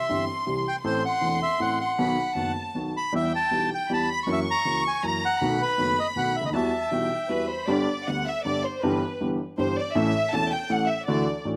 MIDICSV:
0, 0, Header, 1, 4, 480
1, 0, Start_track
1, 0, Key_signature, 1, "minor"
1, 0, Tempo, 378549
1, 1074, Time_signature, 3, 2, 24, 8
1, 9743, Key_signature, 1, "major"
1, 14663, End_track
2, 0, Start_track
2, 0, Title_t, "Violin section"
2, 0, Program_c, 0, 48
2, 0, Note_on_c, 0, 84, 77
2, 1016, Note_off_c, 0, 84, 0
2, 1058, Note_on_c, 0, 84, 85
2, 2458, Note_off_c, 0, 84, 0
2, 2525, Note_on_c, 0, 83, 72
2, 3003, Note_off_c, 0, 83, 0
2, 3005, Note_on_c, 0, 81, 68
2, 3683, Note_off_c, 0, 81, 0
2, 3965, Note_on_c, 0, 79, 69
2, 4890, Note_off_c, 0, 79, 0
2, 4941, Note_on_c, 0, 83, 80
2, 5388, Note_off_c, 0, 83, 0
2, 5412, Note_on_c, 0, 85, 85
2, 6374, Note_off_c, 0, 85, 0
2, 6376, Note_on_c, 0, 82, 86
2, 6853, Note_off_c, 0, 82, 0
2, 6854, Note_on_c, 0, 83, 87
2, 8274, Note_on_c, 0, 81, 70
2, 8285, Note_off_c, 0, 83, 0
2, 8756, Note_on_c, 0, 79, 61
2, 8760, Note_off_c, 0, 81, 0
2, 9243, Note_on_c, 0, 71, 67
2, 9246, Note_on_c, 0, 83, 69
2, 9248, Note_off_c, 0, 79, 0
2, 9477, Note_off_c, 0, 71, 0
2, 9500, Note_on_c, 0, 72, 67
2, 9734, Note_on_c, 0, 74, 83
2, 9740, Note_off_c, 0, 83, 0
2, 9744, Note_off_c, 0, 72, 0
2, 10224, Note_off_c, 0, 74, 0
2, 10236, Note_on_c, 0, 78, 89
2, 10473, Note_off_c, 0, 78, 0
2, 10477, Note_on_c, 0, 76, 85
2, 10711, Note_on_c, 0, 74, 85
2, 10714, Note_off_c, 0, 76, 0
2, 10934, Note_off_c, 0, 74, 0
2, 10959, Note_on_c, 0, 72, 73
2, 11194, Note_off_c, 0, 72, 0
2, 11198, Note_on_c, 0, 71, 73
2, 11670, Note_off_c, 0, 71, 0
2, 12154, Note_on_c, 0, 72, 88
2, 12368, Note_off_c, 0, 72, 0
2, 12395, Note_on_c, 0, 74, 83
2, 12615, Note_on_c, 0, 76, 96
2, 12622, Note_off_c, 0, 74, 0
2, 13075, Note_on_c, 0, 81, 100
2, 13088, Note_off_c, 0, 76, 0
2, 13319, Note_off_c, 0, 81, 0
2, 13324, Note_on_c, 0, 79, 87
2, 13563, Note_off_c, 0, 79, 0
2, 13564, Note_on_c, 0, 78, 92
2, 13779, Note_on_c, 0, 76, 81
2, 13803, Note_off_c, 0, 78, 0
2, 14024, Note_on_c, 0, 74, 75
2, 14031, Note_off_c, 0, 76, 0
2, 14480, Note_off_c, 0, 74, 0
2, 14663, End_track
3, 0, Start_track
3, 0, Title_t, "Bandoneon"
3, 0, Program_c, 1, 23
3, 0, Note_on_c, 1, 76, 72
3, 314, Note_off_c, 1, 76, 0
3, 864, Note_on_c, 1, 79, 73
3, 965, Note_off_c, 1, 79, 0
3, 1087, Note_on_c, 1, 72, 78
3, 1303, Note_off_c, 1, 72, 0
3, 1337, Note_on_c, 1, 78, 84
3, 1773, Note_off_c, 1, 78, 0
3, 1811, Note_on_c, 1, 76, 67
3, 2027, Note_off_c, 1, 76, 0
3, 2048, Note_on_c, 1, 78, 72
3, 2268, Note_off_c, 1, 78, 0
3, 2287, Note_on_c, 1, 78, 72
3, 3196, Note_off_c, 1, 78, 0
3, 3766, Note_on_c, 1, 83, 75
3, 3976, Note_off_c, 1, 83, 0
3, 4002, Note_on_c, 1, 76, 71
3, 4215, Note_off_c, 1, 76, 0
3, 4253, Note_on_c, 1, 81, 83
3, 4689, Note_off_c, 1, 81, 0
3, 4745, Note_on_c, 1, 79, 66
3, 4971, Note_off_c, 1, 79, 0
3, 4987, Note_on_c, 1, 81, 74
3, 5189, Note_off_c, 1, 81, 0
3, 5226, Note_on_c, 1, 83, 74
3, 5324, Note_off_c, 1, 83, 0
3, 5484, Note_on_c, 1, 76, 75
3, 5578, Note_off_c, 1, 76, 0
3, 5713, Note_on_c, 1, 82, 87
3, 6134, Note_off_c, 1, 82, 0
3, 6185, Note_on_c, 1, 80, 64
3, 6408, Note_off_c, 1, 80, 0
3, 6437, Note_on_c, 1, 82, 76
3, 6653, Note_off_c, 1, 82, 0
3, 6659, Note_on_c, 1, 78, 72
3, 7126, Note_off_c, 1, 78, 0
3, 7126, Note_on_c, 1, 71, 79
3, 7600, Note_off_c, 1, 71, 0
3, 7604, Note_on_c, 1, 75, 66
3, 7703, Note_off_c, 1, 75, 0
3, 7833, Note_on_c, 1, 78, 71
3, 8065, Note_off_c, 1, 78, 0
3, 8065, Note_on_c, 1, 76, 68
3, 8167, Note_off_c, 1, 76, 0
3, 8187, Note_on_c, 1, 75, 67
3, 8236, Note_off_c, 1, 75, 0
3, 8314, Note_on_c, 1, 76, 66
3, 9463, Note_off_c, 1, 76, 0
3, 14663, End_track
4, 0, Start_track
4, 0, Title_t, "Grand piano"
4, 0, Program_c, 2, 0
4, 113, Note_on_c, 2, 52, 34
4, 117, Note_on_c, 2, 55, 31
4, 118, Note_on_c, 2, 43, 44
4, 119, Note_on_c, 2, 60, 34
4, 122, Note_on_c, 2, 67, 41
4, 124, Note_on_c, 2, 31, 41
4, 317, Note_off_c, 2, 52, 0
4, 319, Note_off_c, 2, 43, 0
4, 319, Note_off_c, 2, 55, 0
4, 320, Note_off_c, 2, 60, 0
4, 322, Note_off_c, 2, 31, 0
4, 322, Note_off_c, 2, 67, 0
4, 588, Note_on_c, 2, 52, 38
4, 592, Note_on_c, 2, 36, 44
4, 592, Note_on_c, 2, 55, 35
4, 595, Note_on_c, 2, 67, 42
4, 598, Note_on_c, 2, 48, 44
4, 602, Note_on_c, 2, 60, 34
4, 793, Note_off_c, 2, 52, 0
4, 795, Note_off_c, 2, 36, 0
4, 795, Note_off_c, 2, 55, 0
4, 797, Note_off_c, 2, 67, 0
4, 798, Note_off_c, 2, 48, 0
4, 800, Note_off_c, 2, 60, 0
4, 1069, Note_on_c, 2, 52, 60
4, 1072, Note_on_c, 2, 33, 68
4, 1072, Note_on_c, 2, 57, 49
4, 1073, Note_on_c, 2, 45, 65
4, 1073, Note_on_c, 2, 69, 65
4, 1078, Note_on_c, 2, 60, 52
4, 1272, Note_off_c, 2, 52, 0
4, 1274, Note_off_c, 2, 33, 0
4, 1274, Note_off_c, 2, 45, 0
4, 1274, Note_off_c, 2, 57, 0
4, 1274, Note_off_c, 2, 69, 0
4, 1276, Note_off_c, 2, 60, 0
4, 1536, Note_on_c, 2, 52, 40
4, 1539, Note_on_c, 2, 40, 42
4, 1540, Note_on_c, 2, 28, 45
4, 1540, Note_on_c, 2, 57, 33
4, 1541, Note_on_c, 2, 60, 34
4, 1546, Note_on_c, 2, 69, 42
4, 1747, Note_off_c, 2, 52, 0
4, 1748, Note_off_c, 2, 40, 0
4, 1749, Note_off_c, 2, 28, 0
4, 1749, Note_off_c, 2, 57, 0
4, 1749, Note_off_c, 2, 60, 0
4, 1751, Note_off_c, 2, 69, 0
4, 2027, Note_on_c, 2, 52, 39
4, 2028, Note_on_c, 2, 57, 36
4, 2029, Note_on_c, 2, 45, 48
4, 2031, Note_on_c, 2, 33, 47
4, 2031, Note_on_c, 2, 69, 42
4, 2036, Note_on_c, 2, 60, 35
4, 2233, Note_off_c, 2, 52, 0
4, 2234, Note_off_c, 2, 45, 0
4, 2234, Note_off_c, 2, 57, 0
4, 2235, Note_off_c, 2, 33, 0
4, 2235, Note_off_c, 2, 69, 0
4, 2238, Note_off_c, 2, 60, 0
4, 2515, Note_on_c, 2, 51, 57
4, 2516, Note_on_c, 2, 35, 68
4, 2517, Note_on_c, 2, 47, 67
4, 2517, Note_on_c, 2, 54, 53
4, 2521, Note_on_c, 2, 59, 50
4, 2522, Note_on_c, 2, 66, 58
4, 2718, Note_off_c, 2, 51, 0
4, 2719, Note_off_c, 2, 35, 0
4, 2719, Note_off_c, 2, 47, 0
4, 2719, Note_off_c, 2, 54, 0
4, 2721, Note_off_c, 2, 59, 0
4, 2722, Note_off_c, 2, 66, 0
4, 2980, Note_on_c, 2, 51, 35
4, 2985, Note_on_c, 2, 30, 43
4, 2987, Note_on_c, 2, 59, 34
4, 2990, Note_on_c, 2, 42, 42
4, 2991, Note_on_c, 2, 66, 40
4, 2992, Note_on_c, 2, 54, 31
4, 3193, Note_off_c, 2, 51, 0
4, 3195, Note_off_c, 2, 30, 0
4, 3196, Note_off_c, 2, 59, 0
4, 3198, Note_off_c, 2, 42, 0
4, 3198, Note_off_c, 2, 66, 0
4, 3199, Note_off_c, 2, 54, 0
4, 3482, Note_on_c, 2, 51, 37
4, 3484, Note_on_c, 2, 54, 32
4, 3487, Note_on_c, 2, 35, 39
4, 3488, Note_on_c, 2, 47, 43
4, 3489, Note_on_c, 2, 59, 34
4, 3492, Note_on_c, 2, 66, 42
4, 3689, Note_off_c, 2, 51, 0
4, 3691, Note_off_c, 2, 54, 0
4, 3692, Note_off_c, 2, 35, 0
4, 3693, Note_off_c, 2, 47, 0
4, 3693, Note_off_c, 2, 59, 0
4, 3695, Note_off_c, 2, 66, 0
4, 3962, Note_on_c, 2, 55, 50
4, 3963, Note_on_c, 2, 52, 61
4, 3965, Note_on_c, 2, 40, 60
4, 3967, Note_on_c, 2, 59, 50
4, 3973, Note_on_c, 2, 67, 57
4, 4173, Note_off_c, 2, 55, 0
4, 4174, Note_off_c, 2, 40, 0
4, 4175, Note_off_c, 2, 59, 0
4, 4176, Note_off_c, 2, 52, 0
4, 4178, Note_off_c, 2, 67, 0
4, 4449, Note_on_c, 2, 52, 36
4, 4453, Note_on_c, 2, 35, 40
4, 4454, Note_on_c, 2, 47, 38
4, 4454, Note_on_c, 2, 59, 33
4, 4456, Note_on_c, 2, 55, 32
4, 4459, Note_on_c, 2, 67, 37
4, 4660, Note_off_c, 2, 52, 0
4, 4662, Note_off_c, 2, 35, 0
4, 4662, Note_off_c, 2, 47, 0
4, 4662, Note_off_c, 2, 59, 0
4, 4663, Note_off_c, 2, 55, 0
4, 4664, Note_off_c, 2, 67, 0
4, 4939, Note_on_c, 2, 52, 45
4, 4940, Note_on_c, 2, 40, 45
4, 4942, Note_on_c, 2, 55, 34
4, 4942, Note_on_c, 2, 59, 33
4, 4951, Note_on_c, 2, 67, 43
4, 5143, Note_off_c, 2, 40, 0
4, 5144, Note_off_c, 2, 52, 0
4, 5144, Note_off_c, 2, 55, 0
4, 5144, Note_off_c, 2, 59, 0
4, 5149, Note_off_c, 2, 67, 0
4, 5411, Note_on_c, 2, 54, 66
4, 5412, Note_on_c, 2, 52, 57
4, 5413, Note_on_c, 2, 42, 68
4, 5415, Note_on_c, 2, 58, 55
4, 5419, Note_on_c, 2, 61, 52
4, 5420, Note_on_c, 2, 66, 64
4, 5618, Note_off_c, 2, 54, 0
4, 5619, Note_off_c, 2, 42, 0
4, 5619, Note_off_c, 2, 52, 0
4, 5621, Note_off_c, 2, 58, 0
4, 5622, Note_off_c, 2, 61, 0
4, 5623, Note_off_c, 2, 66, 0
4, 5896, Note_on_c, 2, 58, 32
4, 5897, Note_on_c, 2, 49, 41
4, 5898, Note_on_c, 2, 37, 42
4, 5898, Note_on_c, 2, 52, 37
4, 5900, Note_on_c, 2, 61, 33
4, 5901, Note_on_c, 2, 66, 40
4, 6100, Note_off_c, 2, 49, 0
4, 6100, Note_off_c, 2, 52, 0
4, 6100, Note_off_c, 2, 58, 0
4, 6101, Note_off_c, 2, 37, 0
4, 6101, Note_off_c, 2, 61, 0
4, 6102, Note_off_c, 2, 66, 0
4, 6378, Note_on_c, 2, 61, 36
4, 6380, Note_on_c, 2, 42, 45
4, 6382, Note_on_c, 2, 52, 39
4, 6382, Note_on_c, 2, 58, 38
4, 6384, Note_on_c, 2, 54, 46
4, 6386, Note_on_c, 2, 66, 40
4, 6579, Note_off_c, 2, 61, 0
4, 6580, Note_off_c, 2, 42, 0
4, 6580, Note_off_c, 2, 52, 0
4, 6581, Note_off_c, 2, 58, 0
4, 6582, Note_off_c, 2, 54, 0
4, 6582, Note_off_c, 2, 66, 0
4, 6861, Note_on_c, 2, 47, 66
4, 6861, Note_on_c, 2, 57, 56
4, 6862, Note_on_c, 2, 59, 52
4, 6866, Note_on_c, 2, 51, 61
4, 6868, Note_on_c, 2, 35, 70
4, 6870, Note_on_c, 2, 66, 60
4, 7057, Note_off_c, 2, 47, 0
4, 7057, Note_off_c, 2, 57, 0
4, 7058, Note_off_c, 2, 59, 0
4, 7060, Note_off_c, 2, 51, 0
4, 7061, Note_off_c, 2, 35, 0
4, 7062, Note_off_c, 2, 66, 0
4, 7326, Note_on_c, 2, 51, 38
4, 7334, Note_on_c, 2, 59, 36
4, 7335, Note_on_c, 2, 42, 44
4, 7335, Note_on_c, 2, 57, 38
4, 7338, Note_on_c, 2, 30, 42
4, 7341, Note_on_c, 2, 66, 41
4, 7529, Note_off_c, 2, 51, 0
4, 7533, Note_off_c, 2, 42, 0
4, 7533, Note_off_c, 2, 57, 0
4, 7533, Note_off_c, 2, 59, 0
4, 7535, Note_off_c, 2, 30, 0
4, 7536, Note_off_c, 2, 66, 0
4, 7808, Note_on_c, 2, 51, 40
4, 7810, Note_on_c, 2, 57, 36
4, 7811, Note_on_c, 2, 59, 36
4, 7812, Note_on_c, 2, 35, 44
4, 7817, Note_on_c, 2, 66, 43
4, 7819, Note_on_c, 2, 47, 45
4, 8008, Note_off_c, 2, 51, 0
4, 8009, Note_off_c, 2, 57, 0
4, 8009, Note_off_c, 2, 59, 0
4, 8010, Note_off_c, 2, 35, 0
4, 8012, Note_off_c, 2, 66, 0
4, 8014, Note_off_c, 2, 47, 0
4, 8126, Note_on_c, 2, 37, 42
4, 8173, Note_on_c, 2, 38, 46
4, 8175, Note_off_c, 2, 37, 0
4, 8228, Note_on_c, 2, 39, 57
4, 8229, Note_off_c, 2, 38, 0
4, 8287, Note_off_c, 2, 39, 0
4, 8287, Note_on_c, 2, 55, 50
4, 8290, Note_on_c, 2, 40, 63
4, 8290, Note_on_c, 2, 52, 65
4, 8293, Note_on_c, 2, 59, 50
4, 8300, Note_on_c, 2, 66, 66
4, 8488, Note_off_c, 2, 55, 0
4, 8489, Note_off_c, 2, 40, 0
4, 8490, Note_off_c, 2, 52, 0
4, 8491, Note_off_c, 2, 59, 0
4, 8494, Note_off_c, 2, 66, 0
4, 8763, Note_on_c, 2, 52, 33
4, 8768, Note_on_c, 2, 55, 35
4, 8773, Note_on_c, 2, 35, 41
4, 8773, Note_on_c, 2, 66, 40
4, 8774, Note_on_c, 2, 59, 30
4, 8775, Note_on_c, 2, 47, 39
4, 8968, Note_off_c, 2, 52, 0
4, 8970, Note_off_c, 2, 55, 0
4, 8973, Note_off_c, 2, 35, 0
4, 8973, Note_off_c, 2, 59, 0
4, 8973, Note_off_c, 2, 66, 0
4, 8974, Note_off_c, 2, 47, 0
4, 9247, Note_on_c, 2, 55, 34
4, 9248, Note_on_c, 2, 52, 40
4, 9250, Note_on_c, 2, 59, 35
4, 9253, Note_on_c, 2, 66, 39
4, 9255, Note_on_c, 2, 40, 41
4, 9457, Note_off_c, 2, 55, 0
4, 9458, Note_off_c, 2, 52, 0
4, 9458, Note_off_c, 2, 59, 0
4, 9459, Note_off_c, 2, 66, 0
4, 9461, Note_off_c, 2, 40, 0
4, 9731, Note_on_c, 2, 55, 60
4, 9733, Note_on_c, 2, 50, 66
4, 9735, Note_on_c, 2, 31, 73
4, 9735, Note_on_c, 2, 43, 74
4, 9739, Note_on_c, 2, 59, 61
4, 9744, Note_on_c, 2, 67, 70
4, 9942, Note_off_c, 2, 55, 0
4, 9943, Note_off_c, 2, 50, 0
4, 9944, Note_off_c, 2, 31, 0
4, 9944, Note_off_c, 2, 43, 0
4, 9946, Note_off_c, 2, 59, 0
4, 9949, Note_off_c, 2, 67, 0
4, 10242, Note_on_c, 2, 50, 46
4, 10243, Note_on_c, 2, 55, 39
4, 10244, Note_on_c, 2, 59, 36
4, 10246, Note_on_c, 2, 38, 50
4, 10248, Note_on_c, 2, 67, 43
4, 10438, Note_off_c, 2, 55, 0
4, 10438, Note_off_c, 2, 59, 0
4, 10440, Note_off_c, 2, 38, 0
4, 10440, Note_off_c, 2, 50, 0
4, 10440, Note_off_c, 2, 67, 0
4, 10711, Note_on_c, 2, 50, 45
4, 10714, Note_on_c, 2, 43, 52
4, 10715, Note_on_c, 2, 59, 42
4, 10716, Note_on_c, 2, 55, 37
4, 10717, Note_on_c, 2, 31, 49
4, 10724, Note_on_c, 2, 67, 47
4, 10913, Note_off_c, 2, 50, 0
4, 10914, Note_off_c, 2, 43, 0
4, 10915, Note_off_c, 2, 31, 0
4, 10915, Note_off_c, 2, 55, 0
4, 10915, Note_off_c, 2, 59, 0
4, 10919, Note_off_c, 2, 67, 0
4, 11200, Note_on_c, 2, 43, 80
4, 11200, Note_on_c, 2, 52, 59
4, 11201, Note_on_c, 2, 55, 62
4, 11202, Note_on_c, 2, 59, 62
4, 11203, Note_on_c, 2, 31, 71
4, 11205, Note_on_c, 2, 67, 70
4, 11395, Note_off_c, 2, 52, 0
4, 11396, Note_off_c, 2, 43, 0
4, 11396, Note_off_c, 2, 55, 0
4, 11396, Note_off_c, 2, 59, 0
4, 11397, Note_off_c, 2, 31, 0
4, 11397, Note_off_c, 2, 67, 0
4, 11674, Note_on_c, 2, 55, 42
4, 11675, Note_on_c, 2, 52, 39
4, 11677, Note_on_c, 2, 43, 52
4, 11678, Note_on_c, 2, 31, 51
4, 11680, Note_on_c, 2, 59, 41
4, 11683, Note_on_c, 2, 67, 52
4, 11870, Note_off_c, 2, 52, 0
4, 11870, Note_off_c, 2, 55, 0
4, 11872, Note_off_c, 2, 31, 0
4, 11872, Note_off_c, 2, 43, 0
4, 11873, Note_off_c, 2, 59, 0
4, 11874, Note_off_c, 2, 67, 0
4, 12145, Note_on_c, 2, 43, 57
4, 12148, Note_on_c, 2, 52, 43
4, 12151, Note_on_c, 2, 31, 55
4, 12153, Note_on_c, 2, 55, 42
4, 12155, Note_on_c, 2, 67, 48
4, 12156, Note_on_c, 2, 59, 42
4, 12343, Note_off_c, 2, 52, 0
4, 12345, Note_off_c, 2, 31, 0
4, 12346, Note_off_c, 2, 43, 0
4, 12346, Note_off_c, 2, 55, 0
4, 12347, Note_off_c, 2, 59, 0
4, 12347, Note_off_c, 2, 67, 0
4, 12619, Note_on_c, 2, 52, 70
4, 12621, Note_on_c, 2, 33, 82
4, 12623, Note_on_c, 2, 57, 62
4, 12626, Note_on_c, 2, 45, 78
4, 12628, Note_on_c, 2, 61, 62
4, 12632, Note_on_c, 2, 69, 80
4, 12814, Note_off_c, 2, 52, 0
4, 12816, Note_off_c, 2, 33, 0
4, 12817, Note_off_c, 2, 57, 0
4, 12818, Note_off_c, 2, 45, 0
4, 12819, Note_off_c, 2, 61, 0
4, 12821, Note_off_c, 2, 69, 0
4, 13092, Note_on_c, 2, 52, 45
4, 13097, Note_on_c, 2, 61, 43
4, 13098, Note_on_c, 2, 28, 53
4, 13099, Note_on_c, 2, 40, 54
4, 13100, Note_on_c, 2, 57, 44
4, 13100, Note_on_c, 2, 69, 50
4, 13289, Note_off_c, 2, 52, 0
4, 13292, Note_off_c, 2, 28, 0
4, 13292, Note_off_c, 2, 61, 0
4, 13293, Note_off_c, 2, 40, 0
4, 13293, Note_off_c, 2, 69, 0
4, 13294, Note_off_c, 2, 57, 0
4, 13562, Note_on_c, 2, 57, 43
4, 13564, Note_on_c, 2, 33, 55
4, 13564, Note_on_c, 2, 45, 52
4, 13565, Note_on_c, 2, 52, 45
4, 13566, Note_on_c, 2, 69, 54
4, 13567, Note_on_c, 2, 61, 42
4, 13763, Note_off_c, 2, 57, 0
4, 13764, Note_off_c, 2, 45, 0
4, 13765, Note_off_c, 2, 33, 0
4, 13765, Note_off_c, 2, 52, 0
4, 13765, Note_off_c, 2, 69, 0
4, 13766, Note_off_c, 2, 61, 0
4, 14046, Note_on_c, 2, 57, 57
4, 14048, Note_on_c, 2, 50, 78
4, 14049, Note_on_c, 2, 62, 64
4, 14050, Note_on_c, 2, 66, 73
4, 14051, Note_on_c, 2, 52, 66
4, 14052, Note_on_c, 2, 38, 76
4, 14246, Note_off_c, 2, 57, 0
4, 14247, Note_off_c, 2, 50, 0
4, 14247, Note_off_c, 2, 62, 0
4, 14248, Note_off_c, 2, 66, 0
4, 14249, Note_off_c, 2, 38, 0
4, 14249, Note_off_c, 2, 52, 0
4, 14518, Note_on_c, 2, 33, 48
4, 14518, Note_on_c, 2, 52, 43
4, 14520, Note_on_c, 2, 57, 41
4, 14521, Note_on_c, 2, 45, 49
4, 14524, Note_on_c, 2, 62, 39
4, 14525, Note_on_c, 2, 66, 45
4, 14663, Note_off_c, 2, 33, 0
4, 14663, Note_off_c, 2, 45, 0
4, 14663, Note_off_c, 2, 52, 0
4, 14663, Note_off_c, 2, 57, 0
4, 14663, Note_off_c, 2, 62, 0
4, 14663, Note_off_c, 2, 66, 0
4, 14663, End_track
0, 0, End_of_file